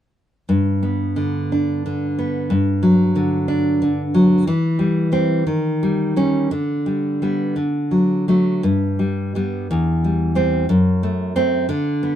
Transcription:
0.49 G2
0.83 B3
1.16 D3
1.52 D4
1.86 D3
2.19 B3
2.50 G2
2.83 F#3
3.16 D3
3.48 D4
3.82 D3
4.14 F#3
4.47 E3
4.79 G3
5.12 G3 C4
5.47 D#3
5.83 G3
6.16 G3 C#4
6.51 D3
6.86 G3
7.22 G3 B3
7.56 D3
7.91 F#3
8.28 F#3 A3
8.63 G2
8.99 G3
9.35 G3 B3
9.71 E2
10.04 G3
10.35 G3 C4
10.69 F#2
11.03 A3
11.36 A3 C4
11.69 D3
12.03 B3

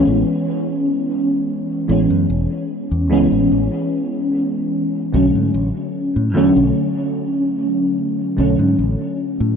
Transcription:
Already playing: E3 G#3 B3 C#4
0.07 A1
1.88 A1 E3 G#3 B3 C#4
2.10 F#2
2.30 E1
2.91 E2
3.10 C#2 E3 G#3 B3 C#4
3.32 A1
3.52 A1
5.13 B1 D3 F#3 A3 C#4
5.35 G#2
5.54 A1
6.16 A2
6.34 E2 D3 F#3 A3 C#4
6.56 B1
8.37 B1 D3 F#3 A3 C#4
8.59 G#2
8.79 A1
9.40 A2

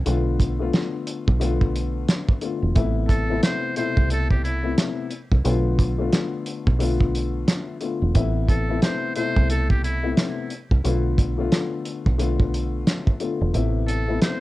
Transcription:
0.06 B1 D3 A3 B3 F4, closed hi-hat
0.40 kick, closed hi-hat
0.59 D3 A3 B3 F4
0.73 snare, closed hi-hat
1.07 closed hi-hat
1.28 B1, kick
1.40 D3 A3 B3 F4, closed hi-hat
1.61 kick
1.76 closed hi-hat
2.08 snare, closed hi-hat
2.28 kick
2.41 D3 A3 B3 F4, closed hi-hat
2.62 E1
2.75 A1 C3 A3 B3 E4, kick, closed hi-hat
3.09 A4, kick, closed hi-hat
3.29 C3 A3 B3 E4
3.43 C5, snare, closed hi-hat
3.76 B2 C3 A3 E4 C5, closed hi-hat
3.97 C2, kick
4.10 A4, closed hi-hat
4.31 G4, kick
4.44 E4, closed hi-hat
4.63 C3 A3 B3 E4
4.78 snare, closed hi-hat
5.11 closed hi-hat
5.32 C2, kick
5.45 B1 D3 A3 B3 F4, closed hi-hat
5.79 kick, closed hi-hat
5.98 D3 A3 B3 F4
6.13 snare, closed hi-hat
6.46 closed hi-hat
6.67 B1, kick
6.79 D3 A3 B3 F4, closed hi-hat
7.00 kick
7.15 closed hi-hat
7.48 snare, closed hi-hat
7.81 D3 A3 B3 F4, closed hi-hat
8.02 E1
8.14 A1 C3 A3 B3 E4, kick, closed hi-hat
8.48 A4, kick, closed hi-hat
8.68 C3 A3 B3 E4
8.82 C5, snare, closed hi-hat
9.16 B2 C3 A3 E4 C5, closed hi-hat
9.36 C2, kick
9.50 A4, closed hi-hat
9.70 G4, kick
9.84 E4, closed hi-hat
10.02 C3 A3 B3 E4
10.17 snare, closed hi-hat
10.50 closed hi-hat
10.71 C2, kick
10.84 B1 D3 A3 B3 F4, closed hi-hat
11.18 kick, closed hi-hat
11.38 D3 A3 B3 F4
11.52 snare, closed hi-hat
11.85 closed hi-hat
12.06 B1, kick
12.18 D3 A3 B3 F4, closed hi-hat
12.40 kick
12.54 closed hi-hat
12.87 snare, closed hi-hat
13.07 kick
13.20 D3 A3 B3 F4, closed hi-hat
13.41 E1
13.53 A1 C3 A3 B3 E4, closed hi-hat
13.87 A4, closed hi-hat
14.07 C3 A3 B3 E4
14.22 C5, snare, closed hi-hat

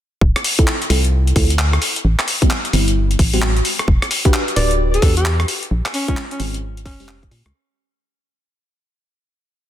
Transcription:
0.21 D1, kick
0.36 cross-stick, closed hi-hat
0.44 open hi-hat
0.59 C4 E4 F4 A4, kick, closed hi-hat
0.67 clap
0.82 closed hi-hat
0.90 C2 C4 E4 F4 A4, open hi-hat
1.04 closed hi-hat
1.27 closed hi-hat
1.36 D2 C4 E4 F4 A4, kick, open hi-hat
1.50 closed hi-hat
1.59 clap
1.73 cross-stick, closed hi-hat
1.82 open hi-hat
1.96 closed hi-hat
2.05 A1
2.19 cross-stick, clap, closed hi-hat
2.28 open hi-hat
2.42 G3 B3 C4 E4, kick, closed hi-hat
2.50 clap
2.65 closed hi-hat
2.73 G1 G3 B3 C4 E4, open hi-hat
2.88 closed hi-hat
3.11 closed hi-hat
3.19 A1, kick, open hi-hat
3.33 G3 B3 C4 F#4, open hi-hat
3.42 clap
3.57 closed hi-hat
3.65 open hi-hat
3.79 cross-stick, closed hi-hat
3.88 E1, kick
4.02 cross-stick, closed hi-hat
4.11 open hi-hat
4.25 D4 F#4 G4 B4, kick, closed hi-hat
4.34 clap
4.48 closed hi-hat
4.56 D1 D4 F#4 G4 B4 D5, open hi-hat
4.71 closed hi-hat
4.94 A4, closed hi-hat
5.02 E2 D4 F#4 G4 B4, kick, open hi-hat
5.17 G4, closed hi-hat
5.25 clap
5.40 cross-stick, closed hi-hat
5.48 open hi-hat
5.63 closed hi-hat
5.71 A#1
5.86 cross-stick, clap, closed hi-hat
5.94 C#4, open hi-hat
6.08 G#3 C4 C#4 F4, kick, closed hi-hat
6.17 clap
6.31 C#4, closed hi-hat
6.40 G#1 G#3 C4 C#4 F4, open hi-hat
6.54 closed hi-hat
6.77 closed hi-hat
6.86 F1 C#4, kick, open hi-hat
7.00 G#3 C4 C#4 G4, open hi-hat
7.08 clap
7.23 kick, closed hi-hat
7.31 A#2, open hi-hat
7.46 C#2, cross-stick, closed hi-hat

